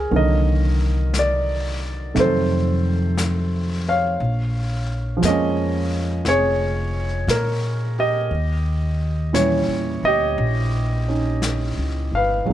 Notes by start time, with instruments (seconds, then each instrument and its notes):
Already playing: grand piano F3 G#3 A#3 C#4 G#4 A#4 C#5
0.10 upright bass C2, grand piano D3 D#3 F#3 A#3, brush sweep
0.15 grand piano A#4 D#5
1.14 brush sweep, snare, hi-hat pedal
1.19 grand piano D5
2.14 upright bass F2, grand piano C3 D#3 F#3 A3, brush sweep, snare
2.19 grand piano A4 C5
3.17 brush sweep, snare, hi-hat pedal
3.89 grand piano C#5 F5
4.20 upright bass A#1, brush sweep
5.17 grand piano F3 G#3
5.22 upright bass F2, grand piano A#3 D#5, brush sweep, snare, hi-hat pedal
5.28 grand piano C#4
6.25 upright bass F1, grand piano G#4 C#5, brush sweep, snare
7.27 upright bass A#2, grand piano A#4, brush sweep, snare, hi-hat pedal
7.99 grand piano G4 D#5
8.31 upright bass D#2, brush sweep
9.33 grand piano A#2 E3 G3 C#4 C#5, brush sweep, snare, hi-hat pedal
9.68 upright bass E2
10.03 upright bass D2, grand piano D#5
10.07 grand piano G4
10.38 upright bass A#1, brush sweep
11.08 grand piano C#4 D#4
11.42 brush sweep, snare, hi-hat pedal
11.77 upright bass C#2
12.12 upright bass G1, grand piano F5
12.17 grand piano B4
12.45 upright bass G#1, grand piano F#3 G#3 B3, brush sweep
12.50 grand piano D#4